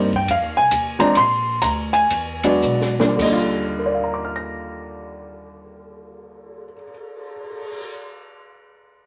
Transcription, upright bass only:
0, 0, Header, 1, 2, 480
1, 0, Start_track
1, 0, Key_signature, -3, "major"
1, 0, Tempo, 434153
1, 1268, Time_signature, 4, 2, 24, 8
1, 1268, Tempo, 479616
1, 2228, Tempo, 523104
1, 2708, Tempo, 584795
1, 7989, End_track
2, 0, Start_track
2, 0, Title_t, "Upright bass"
2, 0, Program_c, 0, 32
2, 0, Note_on_c, 0, 43, 89
2, 291, Note_off_c, 0, 43, 0
2, 311, Note_on_c, 0, 41, 75
2, 468, Note_off_c, 0, 41, 0
2, 468, Note_on_c, 0, 39, 52
2, 620, Note_off_c, 0, 39, 0
2, 631, Note_on_c, 0, 36, 58
2, 772, Note_off_c, 0, 36, 0
2, 788, Note_on_c, 0, 39, 72
2, 1260, Note_off_c, 0, 39, 0
2, 1275, Note_on_c, 0, 34, 87
2, 1725, Note_off_c, 0, 34, 0
2, 1743, Note_on_c, 0, 38, 90
2, 2217, Note_off_c, 0, 38, 0
2, 2230, Note_on_c, 0, 40, 80
2, 2695, Note_off_c, 0, 40, 0
2, 2707, Note_on_c, 0, 35, 81
2, 3156, Note_off_c, 0, 35, 0
2, 3168, Note_on_c, 0, 39, 89
2, 6068, Note_off_c, 0, 39, 0
2, 7989, End_track
0, 0, End_of_file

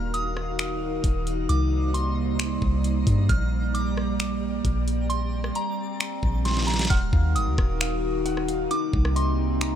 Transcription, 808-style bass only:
0, 0, Header, 1, 2, 480
1, 0, Start_track
1, 0, Tempo, 451128
1, 1585, Time_signature, 4, 2, 24, 8
1, 10379, End_track
2, 0, Start_track
2, 0, Title_t, "808-style bass"
2, 0, Program_c, 0, 38
2, 0, Note_on_c, 0, 27, 114
2, 1063, Note_off_c, 0, 27, 0
2, 1105, Note_on_c, 0, 27, 108
2, 1566, Note_off_c, 0, 27, 0
2, 1588, Note_on_c, 0, 36, 109
2, 2744, Note_off_c, 0, 36, 0
2, 2787, Note_on_c, 0, 36, 105
2, 3247, Note_off_c, 0, 36, 0
2, 3264, Note_on_c, 0, 43, 103
2, 3495, Note_off_c, 0, 43, 0
2, 3506, Note_on_c, 0, 34, 110
2, 4903, Note_off_c, 0, 34, 0
2, 4944, Note_on_c, 0, 34, 110
2, 5866, Note_off_c, 0, 34, 0
2, 6628, Note_on_c, 0, 34, 112
2, 7318, Note_off_c, 0, 34, 0
2, 7346, Note_on_c, 0, 27, 111
2, 7576, Note_off_c, 0, 27, 0
2, 7585, Note_on_c, 0, 39, 105
2, 7824, Note_on_c, 0, 30, 103
2, 7840, Note_off_c, 0, 39, 0
2, 7944, Note_on_c, 0, 39, 106
2, 7960, Note_off_c, 0, 30, 0
2, 8059, Note_off_c, 0, 39, 0
2, 8067, Note_on_c, 0, 27, 113
2, 9224, Note_off_c, 0, 27, 0
2, 9506, Note_on_c, 0, 36, 104
2, 10379, Note_off_c, 0, 36, 0
2, 10379, End_track
0, 0, End_of_file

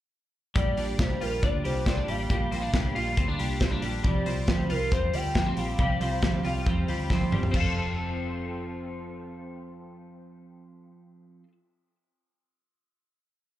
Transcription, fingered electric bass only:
0, 0, Header, 1, 2, 480
1, 0, Start_track
1, 0, Key_signature, -1, "major"
1, 0, Tempo, 436047
1, 610, Time_signature, 4, 2, 24, 8
1, 14962, End_track
2, 0, Start_track
2, 0, Title_t, "Fingered electric bass"
2, 0, Program_c, 0, 33
2, 613, Note_on_c, 0, 34, 100
2, 815, Note_off_c, 0, 34, 0
2, 848, Note_on_c, 0, 34, 78
2, 1052, Note_off_c, 0, 34, 0
2, 1089, Note_on_c, 0, 36, 93
2, 1293, Note_off_c, 0, 36, 0
2, 1331, Note_on_c, 0, 34, 74
2, 1534, Note_off_c, 0, 34, 0
2, 1572, Note_on_c, 0, 38, 88
2, 1775, Note_off_c, 0, 38, 0
2, 1813, Note_on_c, 0, 36, 94
2, 2220, Note_off_c, 0, 36, 0
2, 2290, Note_on_c, 0, 33, 81
2, 2494, Note_off_c, 0, 33, 0
2, 2534, Note_on_c, 0, 34, 104
2, 2736, Note_off_c, 0, 34, 0
2, 2769, Note_on_c, 0, 34, 93
2, 2973, Note_off_c, 0, 34, 0
2, 3010, Note_on_c, 0, 36, 78
2, 3214, Note_off_c, 0, 36, 0
2, 3252, Note_on_c, 0, 34, 74
2, 3455, Note_off_c, 0, 34, 0
2, 3493, Note_on_c, 0, 38, 87
2, 3696, Note_off_c, 0, 38, 0
2, 3732, Note_on_c, 0, 36, 88
2, 4140, Note_off_c, 0, 36, 0
2, 4211, Note_on_c, 0, 34, 76
2, 4416, Note_off_c, 0, 34, 0
2, 4450, Note_on_c, 0, 36, 107
2, 4655, Note_off_c, 0, 36, 0
2, 4694, Note_on_c, 0, 36, 100
2, 4898, Note_off_c, 0, 36, 0
2, 5173, Note_on_c, 0, 36, 81
2, 5377, Note_off_c, 0, 36, 0
2, 5414, Note_on_c, 0, 40, 92
2, 5618, Note_off_c, 0, 40, 0
2, 5655, Note_on_c, 0, 38, 88
2, 6063, Note_off_c, 0, 38, 0
2, 6132, Note_on_c, 0, 34, 90
2, 6337, Note_off_c, 0, 34, 0
2, 6371, Note_on_c, 0, 36, 115
2, 6577, Note_off_c, 0, 36, 0
2, 6610, Note_on_c, 0, 36, 105
2, 6817, Note_off_c, 0, 36, 0
2, 6855, Note_on_c, 0, 38, 96
2, 7060, Note_off_c, 0, 38, 0
2, 7095, Note_on_c, 0, 36, 90
2, 7300, Note_off_c, 0, 36, 0
2, 7336, Note_on_c, 0, 40, 84
2, 7541, Note_off_c, 0, 40, 0
2, 7573, Note_on_c, 0, 38, 89
2, 7983, Note_off_c, 0, 38, 0
2, 8057, Note_on_c, 0, 31, 80
2, 8262, Note_off_c, 0, 31, 0
2, 8301, Note_on_c, 0, 29, 100
2, 12570, Note_off_c, 0, 29, 0
2, 14962, End_track
0, 0, End_of_file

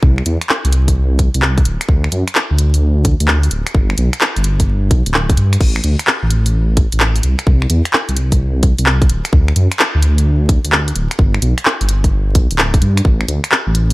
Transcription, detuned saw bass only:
0, 0, Header, 1, 2, 480
1, 0, Start_track
1, 0, Tempo, 465116
1, 27, Time_signature, 4, 2, 24, 8
1, 14379, End_track
2, 0, Start_track
2, 0, Title_t, "Detuned saw bass"
2, 0, Program_c, 0, 39
2, 27, Note_on_c, 0, 36, 94
2, 230, Note_off_c, 0, 36, 0
2, 267, Note_on_c, 0, 40, 94
2, 390, Note_off_c, 0, 40, 0
2, 668, Note_on_c, 0, 36, 88
2, 1328, Note_off_c, 0, 36, 0
2, 1388, Note_on_c, 0, 36, 92
2, 1678, Note_off_c, 0, 36, 0
2, 1709, Note_on_c, 0, 26, 88
2, 1831, Note_off_c, 0, 26, 0
2, 1945, Note_on_c, 0, 38, 98
2, 2149, Note_off_c, 0, 38, 0
2, 2187, Note_on_c, 0, 42, 90
2, 2310, Note_off_c, 0, 42, 0
2, 2586, Note_on_c, 0, 38, 89
2, 3247, Note_off_c, 0, 38, 0
2, 3305, Note_on_c, 0, 38, 92
2, 3596, Note_off_c, 0, 38, 0
2, 3625, Note_on_c, 0, 26, 88
2, 3749, Note_off_c, 0, 26, 0
2, 3866, Note_on_c, 0, 31, 93
2, 4069, Note_off_c, 0, 31, 0
2, 4106, Note_on_c, 0, 35, 90
2, 4229, Note_off_c, 0, 35, 0
2, 4504, Note_on_c, 0, 31, 91
2, 5058, Note_off_c, 0, 31, 0
2, 5065, Note_on_c, 0, 35, 93
2, 5189, Note_off_c, 0, 35, 0
2, 5223, Note_on_c, 0, 26, 96
2, 5515, Note_off_c, 0, 26, 0
2, 5545, Note_on_c, 0, 43, 99
2, 5749, Note_off_c, 0, 43, 0
2, 5785, Note_on_c, 0, 33, 100
2, 5989, Note_off_c, 0, 33, 0
2, 6027, Note_on_c, 0, 38, 93
2, 6150, Note_off_c, 0, 38, 0
2, 6427, Note_on_c, 0, 33, 88
2, 7087, Note_off_c, 0, 33, 0
2, 7147, Note_on_c, 0, 33, 89
2, 7437, Note_off_c, 0, 33, 0
2, 7468, Note_on_c, 0, 36, 92
2, 7590, Note_off_c, 0, 36, 0
2, 7707, Note_on_c, 0, 36, 99
2, 7910, Note_off_c, 0, 36, 0
2, 7946, Note_on_c, 0, 40, 90
2, 8069, Note_off_c, 0, 40, 0
2, 8346, Note_on_c, 0, 36, 89
2, 9007, Note_off_c, 0, 36, 0
2, 9065, Note_on_c, 0, 36, 89
2, 9356, Note_off_c, 0, 36, 0
2, 9386, Note_on_c, 0, 26, 89
2, 9510, Note_off_c, 0, 26, 0
2, 9625, Note_on_c, 0, 38, 99
2, 9829, Note_off_c, 0, 38, 0
2, 9866, Note_on_c, 0, 42, 87
2, 9990, Note_off_c, 0, 42, 0
2, 10267, Note_on_c, 0, 38, 92
2, 10927, Note_off_c, 0, 38, 0
2, 10985, Note_on_c, 0, 38, 87
2, 11276, Note_off_c, 0, 38, 0
2, 11306, Note_on_c, 0, 26, 90
2, 11430, Note_off_c, 0, 26, 0
2, 11546, Note_on_c, 0, 31, 98
2, 11749, Note_off_c, 0, 31, 0
2, 11786, Note_on_c, 0, 35, 91
2, 11910, Note_off_c, 0, 35, 0
2, 12187, Note_on_c, 0, 31, 89
2, 12741, Note_off_c, 0, 31, 0
2, 12747, Note_on_c, 0, 35, 92
2, 12870, Note_off_c, 0, 35, 0
2, 12908, Note_on_c, 0, 26, 92
2, 13198, Note_off_c, 0, 26, 0
2, 13227, Note_on_c, 0, 43, 100
2, 13430, Note_off_c, 0, 43, 0
2, 13466, Note_on_c, 0, 33, 102
2, 13669, Note_off_c, 0, 33, 0
2, 13706, Note_on_c, 0, 38, 92
2, 13829, Note_off_c, 0, 38, 0
2, 14106, Note_on_c, 0, 33, 91
2, 14379, Note_off_c, 0, 33, 0
2, 14379, End_track
0, 0, End_of_file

